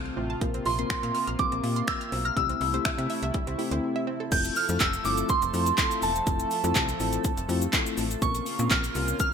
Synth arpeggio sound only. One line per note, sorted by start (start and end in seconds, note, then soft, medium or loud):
0.05 0.13 F6 medium
0.17 0.25 C4 medium
0.30 0.37 A5 medium
0.42 0.50 F3 medium
0.54 0.62 C4 medium
0.66 0.74 F4 medium
0.79 0.86 C6 medium
0.90 0.98 F6 loud
1.03 1.10 F6 medium
1.15 1.23 F6 loud
1.27 1.35 F6 medium
1.39 1.47 F3 medium
1.52 1.59 C4 medium
1.63 1.72 F4 medium
1.76 1.84 C6 medium
2.01 2.08 F6 medium
2.12 2.20 C4 medium
2.25 2.32 A#5 medium
2.37 2.45 G3 loud
2.50 2.57 C4 medium
2.61 2.69 E4 medium
2.74 2.81 C5 medium
2.85 2.94 E5 loud
2.98 3.06 E5 medium
3.10 3.18 E5 loud
3.23 3.30 E5 medium
3.34 3.42 G3 medium
3.47 3.54 C4 medium
3.59 3.67 E4 medium
3.71 3.79 C5 medium
3.96 4.03 E5 medium
4.07 4.15 C4 medium
4.20 4.27 A4 medium